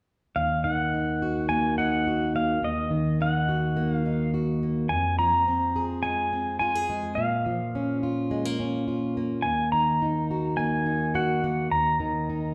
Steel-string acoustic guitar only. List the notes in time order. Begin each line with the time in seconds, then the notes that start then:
0.36 D#2
0.65 D#3
0.94 D#4
1.22 F#4
1.50 A#3
1.79 D#4
2.07 F#4
2.35 A#3
2.62 D#2
2.91 D#3
3.21 D#4
3.49 F#4
3.77 A#3
4.06 D#4
4.34 F#4
4.63 A#3
4.91 F2
5.19 F3
5.48 C4
5.76 G#4
6.04 G#3
6.33 C4
6.61 F4
6.75 G#4
6.90 G#3
7.17 A#2
7.46 F3
7.75 C#4
8.03 F4
8.31 G#3
8.45 A#3
8.60 C#4
8.88 F4
9.17 A#3
9.45 D#2
9.73 D#3
10.02 D#4
10.31 F#4
10.59 A#3
10.86 D#4
11.15 F#4
11.44 A#3
11.71 D#2
12.00 D#3
12.29 D#4